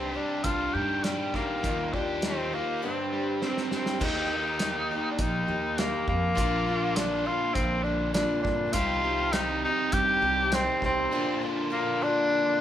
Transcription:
Already playing: upright bass C2, overdriven electric guitar C3 G4, steel-string acoustic guitar D#3 C4 D4 G4, tenor saxophone C4
0.13 overdriven electric guitar G3, steel-string acoustic guitar C4 D4 G4, tenor saxophone D4
0.44 upright bass C2, overdriven electric guitar D4, tenor saxophone F4, kick, closed hi-hat
0.74 upright bass G2, overdriven electric guitar D#3, tenor saxophone G4
1.04 steel-string acoustic guitar D#3 C4 D4 G4, tenor saxophone G3, overdriven electric guitar G3, snare, closed hi-hat
1.34 overdriven electric guitar D#3, tenor saxophone A#3, steel-string acoustic guitar C4 D4 G4, kick, snare
1.63 upright bass D#2, steel-string acoustic guitar D#3 G3 A#3 D#4 F4, kick, closed hi-hat
1.93 steel-string acoustic guitar A#3 D#4 F4, tenor saxophone D4, overdriven electric guitar G4, kick
2.21 steel-string acoustic guitar G3 A#3 D#4 F4, snare, closed hi-hat
2.26 tenor saxophone C4
2.53 steel-string acoustic guitar A#3 D#4 F4, tenor saxophone A#3
2.82 steel-string acoustic guitar G2 D3 G3 C4 D4 G4, tenor saxophone C4
3.12 overdriven electric guitar G3
3.42 steel-string acoustic guitar G3 C4 D4 G4, tenor saxophone C4, snare
3.57 snare
3.71 steel-string acoustic guitar G3 C4 D4 G4, snare
3.75 tenor saxophone C4
3.86 snare
3.99 upright bass D#2, steel-string acoustic guitar D#3 A#3 D#4 G4, kick, crash
4.04 tenor saxophone D#4
4.31 steel-string acoustic guitar A#3 D#4 G4
4.59 steel-string acoustic guitar D#3 A#3 D#4 G4, snare, closed hi-hat
4.91 steel-string acoustic guitar A#3 D#4 G4
5.11 tenor saxophone D4
5.19 upright bass A#1, tenor saxophone D#4, kick, closed hi-hat
5.47 upright bass D#2, steel-string acoustic guitar A#3 D#4 G4
5.78 steel-string acoustic guitar D#3 A#3 D#4 G4, tenor saxophone A#3, snare, closed hi-hat
6.08 upright bass F2, tenor saxophone A#3, kick
6.35 upright bass A#1, steel-string acoustic guitar A#2 F3 A#3 D4 F4, overdriven electric guitar D3, kick, closed hi-hat
6.68 steel-string acoustic guitar A#3 D4 F4
6.96 steel-string acoustic guitar A#3 D4 F4, tenor saxophone D4, snare, closed hi-hat
7.25 steel-string acoustic guitar A#3 D4 F4, tenor saxophone F4
7.55 upright bass A#1, tenor saxophone C4, kick, closed hi-hat
7.83 steel-string acoustic guitar A#3 D4 F4, tenor saxophone D4
8.14 steel-string acoustic guitar F3 A#3 D4 F4, tenor saxophone D4, snare, closed hi-hat
8.43 upright bass G2, tenor saxophone D4, kick, snare
8.73 upright bass C2, steel-string acoustic guitar C3 D#3 C4 D#4 G4, overdriven electric guitar G3, tenor saxophone F4, kick, closed hi-hat
9.03 steel-string acoustic guitar C4 D#4 G4
9.32 steel-string acoustic guitar D#3 C4 D#4 G4, tenor saxophone D#4, snare, closed hi-hat
9.65 steel-string acoustic guitar C4 D#4 G4, tenor saxophone D#4
9.92 upright bass G2, tenor saxophone G4, kick, closed hi-hat
10.22 upright bass C2, steel-string acoustic guitar C4 D#4 G4
10.52 steel-string acoustic guitar D#3 C4 D#4 G4, tenor saxophone C4, snare, closed hi-hat
10.82 upright bass C2, tenor saxophone C4, kick, snare
11.11 steel-string acoustic guitar A#2 F3 A#3 D4 F4, overdriven electric guitar D3
11.41 steel-string acoustic guitar A#3 D4 F4
11.70 steel-string acoustic guitar F3 A#3 D4 F4, tenor saxophone A#3
12.01 steel-string acoustic guitar A#3 D4 F4, tenor saxophone D4

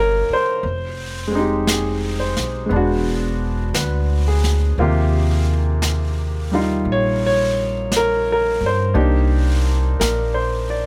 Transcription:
Already playing: upright bass G1, grand piano C3 G3 A#3 D4 D#4 F4 C#5
0.00 grand piano A#4
0.30 grand piano C5, muted upright bass stroke
0.63 upright bass F1, brush sweep
1.27 grand piano G#3 C4
1.35 grand piano D#4 G4
1.67 grand piano G#4, brush sweep, snare, hi-hat pedal
2.20 grand piano C5
2.37 upright bass B1, snare
2.66 grand piano G#3 B3
2.71 upright bass E1, grand piano D4, brush sweep
2.76 grand piano F#4
3.74 upright bass D2, grand piano B4, brush sweep, snare, hi-hat pedal
4.28 grand piano G#4
4.44 snare
4.78 upright bass D#2, grand piano C3 A#3 F4 G4, brush sweep
5.82 brush sweep, snare, hi-hat pedal
6.52 grand piano G3 D#4 F4
6.85 upright bass A#1, brush sweep
6.92 grand piano C#5
7.26 grand piano C#5
7.92 brush sweep, snare, hi-hat pedal
7.97 grand piano A#4
8.32 grand piano A#4
8.61 upright bass G2
8.66 grand piano C5
8.94 upright bass C2, grand piano A#3 D4 D#4 G4, brush sweep
10.00 upright bass A#1, grand piano A#4, brush sweep, snare, hi-hat pedal
10.34 grand piano C5
10.70 grand piano D5

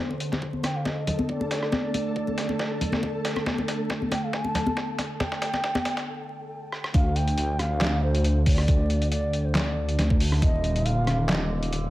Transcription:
0.00 synth drone D3 A3, synth texture A4
0.11 muted conga
0.20 closed hi-hat
0.32 snare, muted conga
0.42 kick
0.53 high conga
0.63 shakuhachi G5, cross-stick, snare, closed hi-hat, muted conga
0.76 shakuhachi F5
0.85 shakuhachi D#5, kick, snare, muted conga
1.07 closed hi-hat, low conga
1.19 muted conga, high conga
1.24 shakuhachi D#5
1.29 shakuhachi D5, kick
1.41 muted conga
1.51 shakuhachi D5, snare, closed hi-hat
1.63 cross-stick
1.72 kick, snare, muted conga, high conga
1.94 closed hi-hat, muted conga
2.16 kick
2.27 muted conga, high conga
2.38 snare, closed hi-hat
2.49 muted conga
2.59 kick, snare
2.81 closed hi-hat, muted conga, low conga
2.92 snare, high conga
3.03 kick, muted conga
3.25 snare, closed hi-hat
3.36 cross-stick, muted conga
3.46 kick, snare, high conga
3.58 muted conga
3.68 snare, closed hi-hat
3.90 kick, snare, muted conga
4.02 high conga
4.12 shakuhachi G5, snare, closed hi-hat, muted conga
4.24 shakuhachi F5
4.33 shakuhachi G#5, kick, snare
4.44 shakuhachi A5, muted conga
4.55 snare, closed hi-hat, low conga
4.66 muted conga, high conga
4.77 kick, snare
4.98 snare, closed hi-hat, muted conga
5.20 shakuhachi G5, kick, snare, muted conga, high conga
5.32 snare
5.42 snare, closed hi-hat
5.53 snare, muted conga
5.64 kick, snare
5.75 snare, muted conga, high conga
5.85 snare, closed hi-hat
5.97 snare, closed hi-hat
6.72 cross-stick
6.84 cross-stick
6.94 detuned saw bass D2, synth drone D3 A3, shakuhachi F5, kick, closed hi-hat
7.16 shakuhachi G5, closed hi-hat
7.28 closed hi-hat
7.38 detuned saw bass D2, closed hi-hat
7.59 shakuhachi F5, cross-stick, closed hi-hat
7.81 snare, clap, closed hi-hat
8.02 shakuhachi C5
8.15 closed hi-hat
8.24 closed hi-hat
8.46 shakuhachi D5, kick, open hi-hat
8.58 cross-stick
8.68 detuned saw bass D2, kick, closed hi-hat
8.90 closed hi-hat
9.02 closed hi-hat
9.11 shakuhachi D5, closed hi-hat
9.33 closed hi-hat
9.45 shakuhachi C5
9.55 shakuhachi D5, snare, clap, closed hi-hat
9.89 closed hi-hat
9.99 detuned saw bass D2, snare, closed hi-hat
10.10 kick
10.20 open hi-hat
10.32 cross-stick
10.42 detuned saw bass D#1, shakuhachi D#5, kick, closed hi-hat
10.64 closed hi-hat
10.76 closed hi-hat
10.85 detuned saw bass D#1, shakuhachi F5, closed hi-hat
11.07 cross-stick, closed hi-hat
11.29 shakuhachi D#5, snare, clap, closed hi-hat
11.63 closed hi-hat
11.73 closed hi-hat

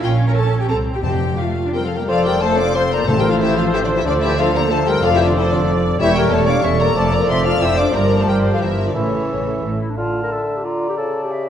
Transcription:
0.02 double bass section A#1, cello section C#4, viola section F4, violin section F5 G5
0.27 viola section A#4, violin section A#5
0.34 viola section A4, violin section A5
0.61 viola section G4, violin section G5
0.68 double bass section C2, cello section C4, viola section A4, violin section A5 A#5
0.94 viola section G4, violin section G5
1.02 timpani F2, double bass section F2, cello section C4, viola section G4, violin section G5 A5
1.38 cello section A3, viola section F4, violin section F5
1.65 cello section D4
1.72 french horn section G3, cello section C4, violin section G4 G5, flute A#4
1.85 french horn section F3, violin section F4 F5, flute A4
1.96 french horn section G3, cello section A#3, violin section G4 G5, flute A#4
2.08 double bass section F1, cello section F2, bassoon F3, french horn section F3, violin section F4 F5, flute A4, clarinet A4, cor anglais C5, viola section D5
2.25 french horn section G3, violin section G4 G5, flute A#4
2.41 bassoon F3, french horn section A3, violin section A4 A5, clarinet A4, flute C5, cor anglais C5, viola section C5
2.58 french horn section D4, violin section D5 D6, flute F5
2.75 bassoon F3, french horn section C4, clarinet A4, cor anglais C5, violin section C5 C6, flute F5
2.92 french horn section A#3, violin section A#4 A#5, flute D5
3.06 double bass section A1, cello section A2, timpani A2, bassoon F3, french horn section A3, clarinet A4, violin section A4 A5, flute C5, cor anglais C5
3.18 french horn section G3, violin section G4 G5, flute A#4
3.29 french horn section F3, violin section F4 F5, flute A4
3.40 french horn section E3, violin section E4 E5, flute G4, viola section C5
3.56 french horn section F3, violin section F4 F5, flute A4
3.72 french horn section E3, violin section E4 E5, flute G4
3.83 french horn section D3, violin section D4 D5, flute F4
3.95 french horn section E3, violin section E4 E5, flute G4
4.05 double bass section D2, french horn section D3, cello section D3, bassoon F3, violin section D4 D5, flute F4, clarinet A4, cor anglais C5, viola section D5
4.22 french horn section E3, violin section E4 E5, flute G4
4.37 french horn section F3, bassoon F3, violin section F4 F5, clarinet A4, viola section A4, flute A4, cor anglais C5
4.54 french horn section A#3, violin section A#4 A#5, flute D5
4.71 bassoon F3, french horn section A3, clarinet A4, violin section A4 A5, flute C5, cor anglais C5
4.86 french horn section G3, violin section G4 G5, flute A#4
5.03 double bass section F1, cello section F2, french horn section F3, bassoon F3, viola section F4, violin section F4 F5, clarinet A4, flute A4, cor anglais D5
5.14 french horn section E3, violin section E4 E5, flute G4
5.25 french horn section D3, violin section D4 D5, flute F4
5.35 french horn section C3, violin section C4 C5, flute E4, viola section A4
5.51 french horn section D3, violin section D4 D5, flute F4
5.68 viola section D5
6.00 double bass section E1, cello section E2, french horn section E3, bassoon G3, violin section E4 E5, flute G4, clarinet A4, cor anglais C#5, viola section C#5
6.15 french horn section G3, violin section G4 G5, flute A#4
6.31 double bass section E1, cello section E2, french horn section A3, violin section A4 A5, viola section C#5, flute C#5
6.47 french horn section D4, violin section D5 D6, flute F5
6.63 double bass section E1, cello section E2, french horn section C#4, viola section A4, violin section C#5 C#6, flute E5
6.79 french horn section A#3, violin section A#4 A#5, flute D5
6.95 double bass section F1, cello section F2, bassoon F3, french horn section A3, violin section A4 A5, viola section D5, flute D5, cor anglais D5
7.12 french horn section A#3, violin section A#4 A#5, flute D5
7.28 double bass section F1, cello section F2, french horn section C4, violin section C5 C6, flute E5
7.45 french horn section F4, violin section F5 F6, flute A5
7.61 double bass section F1, cello section F2, french horn section E4, viola section C5, violin section E5 E6, flute G5
7.78 french horn section D4, violin section D5 D6, flute F5
7.93 double bass section G1, cello section G2, french horn section A#3, clarinet G4, violin section A#4 A#5, viola section A#4, flute D5
8.18 french horn section A3, violin section A4 A5, flute C5
8.27 double bass section G1, cello section G2, french horn section G3, violin section G4 G5, flute A#4, viola section C5
8.51 french horn section F3, violin section F4 F5, flute A4
8.60 double bass section G1, cello section G2, french horn section E3, violin section E4 E5, flute G4, viola section A#4
8.86 french horn section D3, violin section D4 D5, flute F4
8.94 double bass section A1, cello section A2, french horn section C#3, bassoon E3, violin section C#4 C#5, flute E4, clarinet E4, viola section A4, cor anglais E5
9.29 double bass section A1, cello section A2
9.64 double bass section A1, cello section A2
9.81 clarinet E4
9.90 clarinet D4
9.97 bassoon D3, clarinet F4, cor anglais F5, flute A5
10.23 clarinet A#4
10.32 clarinet A4, cor anglais E5
10.57 clarinet G4
10.64 clarinet F4, cor anglais D5, flute A#5
10.89 clarinet G4
10.97 bassoon C#3, clarinet A4, flute A5
11.24 clarinet G4
11.31 flute E5

